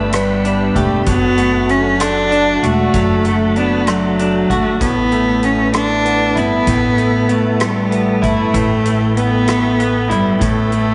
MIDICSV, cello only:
0, 0, Header, 1, 2, 480
1, 0, Start_track
1, 0, Key_signature, 2, "major"
1, 0, Tempo, 623053
1, 822, Time_signature, 6, 3, 24, 8
1, 8432, End_track
2, 0, Start_track
2, 0, Title_t, "Cello"
2, 0, Program_c, 0, 42
2, 0, Note_on_c, 0, 57, 67
2, 98, Note_on_c, 0, 55, 84
2, 110, Note_off_c, 0, 57, 0
2, 576, Note_on_c, 0, 57, 71
2, 588, Note_off_c, 0, 55, 0
2, 819, Note_off_c, 0, 57, 0
2, 827, Note_on_c, 0, 59, 90
2, 1309, Note_on_c, 0, 61, 76
2, 1320, Note_off_c, 0, 59, 0
2, 1548, Note_on_c, 0, 62, 90
2, 1560, Note_off_c, 0, 61, 0
2, 2031, Note_on_c, 0, 57, 76
2, 2043, Note_off_c, 0, 62, 0
2, 2759, Note_on_c, 0, 59, 65
2, 2771, Note_off_c, 0, 57, 0
2, 2997, Note_on_c, 0, 54, 68
2, 3008, Note_off_c, 0, 59, 0
2, 3477, Note_on_c, 0, 57, 69
2, 3488, Note_off_c, 0, 54, 0
2, 3710, Note_off_c, 0, 57, 0
2, 3723, Note_on_c, 0, 59, 78
2, 4196, Note_on_c, 0, 61, 71
2, 4207, Note_off_c, 0, 59, 0
2, 4429, Note_off_c, 0, 61, 0
2, 4437, Note_on_c, 0, 62, 89
2, 4916, Note_on_c, 0, 59, 84
2, 4927, Note_off_c, 0, 62, 0
2, 5632, Note_on_c, 0, 57, 65
2, 5644, Note_off_c, 0, 59, 0
2, 5879, Note_on_c, 0, 55, 72
2, 5890, Note_off_c, 0, 57, 0
2, 6355, Note_on_c, 0, 57, 76
2, 6366, Note_off_c, 0, 55, 0
2, 7076, Note_on_c, 0, 59, 79
2, 7088, Note_off_c, 0, 57, 0
2, 7792, Note_on_c, 0, 55, 66
2, 7803, Note_off_c, 0, 59, 0
2, 8026, Note_off_c, 0, 55, 0
2, 8037, Note_on_c, 0, 57, 75
2, 8432, Note_off_c, 0, 57, 0
2, 8432, End_track
0, 0, End_of_file